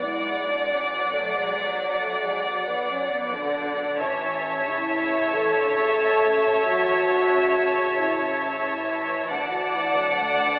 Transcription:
0, 0, Header, 1, 8, 480
1, 0, Start_track
1, 0, Tempo, 441826
1, 1481, Time_signature, 12, 3, 24, 8
1, 11506, End_track
2, 0, Start_track
2, 0, Title_t, "Violin section"
2, 0, Program_c, 0, 48
2, 0, Note_on_c, 0, 78, 36
2, 4309, Note_off_c, 0, 78, 0
2, 4356, Note_on_c, 0, 81, 50
2, 10080, Note_off_c, 0, 81, 0
2, 10119, Note_on_c, 0, 81, 44
2, 11506, Note_off_c, 0, 81, 0
2, 11506, End_track
3, 0, Start_track
3, 0, Title_t, "Violin section"
3, 0, Program_c, 1, 48
3, 0, Note_on_c, 1, 74, 49
3, 4307, Note_off_c, 1, 74, 0
3, 4346, Note_on_c, 1, 76, 58
3, 10075, Note_off_c, 1, 76, 0
3, 10114, Note_on_c, 1, 78, 58
3, 11506, Note_off_c, 1, 78, 0
3, 11506, End_track
4, 0, Start_track
4, 0, Title_t, "Viola section"
4, 0, Program_c, 2, 48
4, 0, Note_on_c, 2, 74, 41
4, 4307, Note_off_c, 2, 74, 0
4, 4341, Note_on_c, 2, 73, 47
4, 10073, Note_off_c, 2, 73, 0
4, 10119, Note_on_c, 2, 74, 48
4, 11506, Note_off_c, 2, 74, 0
4, 11506, End_track
5, 0, Start_track
5, 0, Title_t, "French horn section"
5, 0, Program_c, 3, 60
5, 39, Note_on_c, 3, 64, 70
5, 522, Note_off_c, 3, 64, 0
5, 539, Note_on_c, 3, 62, 56
5, 771, Note_off_c, 3, 62, 0
5, 773, Note_on_c, 3, 61, 59
5, 1227, Note_on_c, 3, 57, 64
5, 1246, Note_off_c, 3, 61, 0
5, 1469, Note_on_c, 3, 56, 60
5, 1474, Note_off_c, 3, 57, 0
5, 1827, Note_off_c, 3, 56, 0
5, 1973, Note_on_c, 3, 54, 60
5, 2181, Note_on_c, 3, 57, 68
5, 2200, Note_off_c, 3, 54, 0
5, 2423, Note_off_c, 3, 57, 0
5, 2435, Note_on_c, 3, 56, 58
5, 2675, Note_off_c, 3, 56, 0
5, 2686, Note_on_c, 3, 54, 61
5, 2904, Note_on_c, 3, 59, 65
5, 2920, Note_off_c, 3, 54, 0
5, 3148, Note_off_c, 3, 59, 0
5, 3157, Note_on_c, 3, 61, 67
5, 3390, Note_off_c, 3, 61, 0
5, 3408, Note_on_c, 3, 59, 61
5, 3636, Note_on_c, 3, 62, 61
5, 3639, Note_off_c, 3, 59, 0
5, 4351, Note_off_c, 3, 62, 0
5, 4371, Note_on_c, 3, 61, 72
5, 5078, Note_off_c, 3, 61, 0
5, 5085, Note_on_c, 3, 64, 78
5, 5806, Note_off_c, 3, 64, 0
5, 5810, Note_on_c, 3, 69, 95
5, 7227, Note_on_c, 3, 66, 91
5, 7241, Note_off_c, 3, 69, 0
5, 8644, Note_off_c, 3, 66, 0
5, 8664, Note_on_c, 3, 64, 64
5, 9191, Note_off_c, 3, 64, 0
5, 9375, Note_on_c, 3, 64, 65
5, 10094, Note_off_c, 3, 64, 0
5, 10100, Note_on_c, 3, 62, 67
5, 10328, Note_on_c, 3, 66, 65
5, 10346, Note_off_c, 3, 62, 0
5, 10585, Note_off_c, 3, 66, 0
5, 10594, Note_on_c, 3, 64, 57
5, 10818, Note_on_c, 3, 62, 60
5, 10839, Note_off_c, 3, 64, 0
5, 11506, Note_off_c, 3, 62, 0
5, 11506, End_track
6, 0, Start_track
6, 0, Title_t, "Cello section"
6, 0, Program_c, 4, 48
6, 50, Note_on_c, 4, 56, 48
6, 752, Note_off_c, 4, 56, 0
6, 770, Note_on_c, 4, 54, 56
6, 2900, Note_off_c, 4, 54, 0
6, 2913, Note_on_c, 4, 54, 53
6, 3617, Note_off_c, 4, 54, 0
6, 3631, Note_on_c, 4, 50, 59
6, 4348, Note_on_c, 4, 52, 57
6, 4349, Note_off_c, 4, 50, 0
6, 5061, Note_on_c, 4, 49, 51
6, 5067, Note_off_c, 4, 52, 0
6, 5780, Note_off_c, 4, 49, 0
6, 5796, Note_on_c, 4, 52, 59
6, 6034, Note_on_c, 4, 50, 54
6, 6037, Note_off_c, 4, 52, 0
6, 6265, Note_on_c, 4, 49, 52
6, 6274, Note_off_c, 4, 50, 0
6, 7229, Note_off_c, 4, 49, 0
6, 7230, Note_on_c, 4, 54, 68
6, 7464, Note_on_c, 4, 52, 56
6, 7468, Note_off_c, 4, 54, 0
6, 7706, Note_on_c, 4, 50, 45
6, 7710, Note_off_c, 4, 52, 0
6, 7951, Note_off_c, 4, 50, 0
6, 7951, Note_on_c, 4, 49, 54
6, 9368, Note_off_c, 4, 49, 0
6, 9395, Note_on_c, 4, 52, 57
6, 10836, Note_on_c, 4, 54, 51
6, 10840, Note_off_c, 4, 52, 0
6, 11078, Note_on_c, 4, 57, 45
6, 11081, Note_off_c, 4, 54, 0
6, 11323, Note_off_c, 4, 57, 0
6, 11333, Note_on_c, 4, 50, 49
6, 11506, Note_off_c, 4, 50, 0
6, 11506, End_track
7, 0, Start_track
7, 0, Title_t, "Double bass section"
7, 0, Program_c, 5, 48
7, 0, Note_on_c, 5, 35, 47
7, 4306, Note_off_c, 5, 35, 0
7, 4344, Note_on_c, 5, 33, 56
7, 10074, Note_off_c, 5, 33, 0
7, 10114, Note_on_c, 5, 38, 52
7, 11506, Note_off_c, 5, 38, 0
7, 11506, End_track
8, 0, Start_track
8, 0, Title_t, "Taiko and cinematic ensemble drums"
8, 4350, Note_on_c, 9, 41, 51
8, 4459, Note_off_c, 9, 41, 0
8, 10116, Note_on_c, 9, 41, 56
8, 10225, Note_off_c, 9, 41, 0
8, 11506, End_track
0, 0, End_of_file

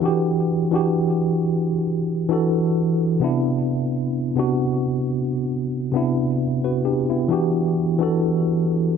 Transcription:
0, 0, Header, 1, 2, 480
1, 0, Start_track
1, 0, Key_signature, 1, "minor"
1, 0, Tempo, 909091
1, 14, Time_signature, 4, 2, 24, 8
1, 4738, End_track
2, 0, Start_track
2, 0, Title_t, "Tine electric piano"
2, 0, Program_c, 0, 4
2, 0, Control_c, 0, 64, 127
2, 0, Note_on_c, 0, 71, 59
2, 6, Note_on_c, 0, 52, 78
2, 13, Note_on_c, 0, 62, 69
2, 21, Control_c, 0, 64, 0
2, 21, Note_on_c, 0, 66, 74
2, 28, Note_on_c, 0, 67, 90
2, 115, Control_c, 0, 64, 127
2, 134, Note_off_c, 0, 71, 0
2, 231, Note_off_c, 0, 52, 0
2, 234, Note_off_c, 0, 62, 0
2, 238, Note_off_c, 0, 66, 0
2, 242, Note_off_c, 0, 67, 0
2, 377, Note_on_c, 0, 52, 77
2, 384, Note_on_c, 0, 62, 74
2, 391, Note_on_c, 0, 66, 74
2, 399, Note_on_c, 0, 67, 91
2, 888, Note_off_c, 0, 52, 0
2, 892, Note_off_c, 0, 62, 0
2, 896, Note_off_c, 0, 66, 0
2, 899, Note_off_c, 0, 67, 0
2, 1207, Note_on_c, 0, 52, 89
2, 1213, Note_on_c, 0, 62, 77
2, 1222, Note_on_c, 0, 66, 77
2, 1230, Note_on_c, 0, 69, 89
2, 1652, Note_off_c, 0, 52, 0
2, 1655, Note_off_c, 0, 62, 0
2, 1659, Note_off_c, 0, 66, 0
2, 1663, Note_off_c, 0, 69, 0
2, 1689, Note_on_c, 0, 48, 88
2, 1696, Note_on_c, 0, 59, 84
2, 1702, Control_c, 0, 64, 0
2, 1703, Note_on_c, 0, 62, 83
2, 1711, Note_on_c, 0, 64, 91
2, 1808, Control_c, 0, 64, 127
2, 2172, Note_off_c, 0, 48, 0
2, 2175, Note_off_c, 0, 59, 0
2, 2179, Note_off_c, 0, 62, 0
2, 2182, Note_off_c, 0, 64, 0
2, 2298, Note_on_c, 0, 48, 78
2, 2306, Note_on_c, 0, 59, 75
2, 2313, Note_on_c, 0, 62, 72
2, 2320, Note_on_c, 0, 66, 89
2, 2809, Note_off_c, 0, 48, 0
2, 2813, Note_off_c, 0, 59, 0
2, 2817, Note_off_c, 0, 62, 0
2, 2820, Note_off_c, 0, 66, 0
2, 3127, Note_on_c, 0, 48, 84
2, 3134, Note_on_c, 0, 59, 78
2, 3142, Note_on_c, 0, 62, 78
2, 3149, Note_on_c, 0, 64, 94
2, 3374, Note_off_c, 0, 59, 0
2, 3378, Note_off_c, 0, 62, 0
2, 3382, Note_off_c, 0, 64, 0
2, 3508, Note_on_c, 0, 71, 65
2, 3511, Note_on_c, 0, 66, 52
2, 3572, Note_off_c, 0, 48, 0
2, 3611, Note_off_c, 0, 71, 0
2, 3612, Note_off_c, 0, 66, 0
2, 3617, Note_on_c, 0, 67, 70
2, 3621, Note_on_c, 0, 62, 59
2, 3739, Note_off_c, 0, 67, 0
2, 3741, Note_off_c, 0, 62, 0
2, 3747, Note_on_c, 0, 64, 65
2, 3751, Note_on_c, 0, 59, 56
2, 3846, Note_on_c, 0, 52, 85
2, 3854, Note_on_c, 0, 62, 75
2, 3861, Control_c, 0, 64, 0
2, 3862, Note_on_c, 0, 66, 74
2, 3869, Note_on_c, 0, 67, 88
2, 3956, Control_c, 0, 64, 127
2, 3974, Note_off_c, 0, 64, 0
2, 3976, Note_off_c, 0, 59, 0
2, 4071, Note_off_c, 0, 52, 0
2, 4075, Note_off_c, 0, 62, 0
2, 4079, Note_off_c, 0, 66, 0
2, 4082, Note_off_c, 0, 67, 0
2, 4216, Note_on_c, 0, 52, 79
2, 4224, Note_on_c, 0, 62, 75
2, 4231, Note_on_c, 0, 66, 74
2, 4238, Note_on_c, 0, 69, 87
2, 4728, Note_off_c, 0, 52, 0
2, 4732, Note_off_c, 0, 62, 0
2, 4736, Note_off_c, 0, 66, 0
2, 4738, Note_off_c, 0, 69, 0
2, 4738, End_track
0, 0, End_of_file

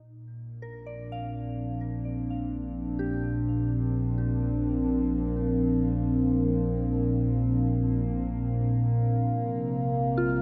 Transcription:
0, 0, Header, 1, 5, 480
1, 0, Start_track
1, 0, Key_signature, -2, "major"
1, 0, Tempo, 500000
1, 10002, End_track
2, 0, Start_track
2, 0, Title_t, "Synth bell"
2, 0, Program_c, 0, 98
2, 30, Control_c, 0, 64, 127
2, 598, Note_on_c, 0, 70, 52
2, 830, Note_on_c, 0, 74, 39
2, 1076, Note_on_c, 0, 77, 48
2, 2534, Note_off_c, 0, 70, 0
2, 2744, Note_off_c, 0, 74, 0
2, 2871, Note_on_c, 0, 67, 59
2, 2961, Note_off_c, 0, 77, 0
2, 4804, Note_off_c, 0, 67, 0
2, 8998, Control_c, 0, 64, 0
2, 9177, Control_c, 0, 64, 127
2, 9768, Note_on_c, 0, 65, 53
2, 10002, Note_off_c, 0, 65, 0
2, 10002, End_track
3, 0, Start_track
3, 0, Title_t, "Synth drone"
3, 0, Program_c, 1, 95
3, 0, Note_on_c, 1, 58, 75
3, 10002, Note_off_c, 1, 58, 0
3, 10002, End_track
4, 0, Start_track
4, 0, Title_t, "Ambient pad"
4, 0, Program_c, 2, 92
4, 0, Note_on_c, 2, 46, 62
4, 442, Note_on_c, 2, 62, 80
4, 658, Note_on_c, 2, 53, 78
4, 660, Note_on_c, 2, 60, 73
4, 8978, Note_on_c, 2, 48, 64
4, 8985, Note_off_c, 2, 62, 0
4, 8990, Note_off_c, 2, 53, 0
4, 8991, Note_off_c, 2, 46, 0
4, 9547, Note_on_c, 2, 55, 60
4, 10002, Note_off_c, 2, 48, 0
4, 10002, Note_off_c, 2, 55, 0
4, 10002, Note_off_c, 2, 60, 0
4, 10002, End_track
5, 0, Start_track
5, 0, Title_t, "Sub bass"
5, 0, Program_c, 3, 38
5, 0, Note_on_c, 3, 34, 78
5, 8947, Note_off_c, 3, 34, 0
5, 8979, Note_on_c, 3, 34, 82
5, 10002, Note_off_c, 3, 34, 0
5, 10002, End_track
0, 0, End_of_file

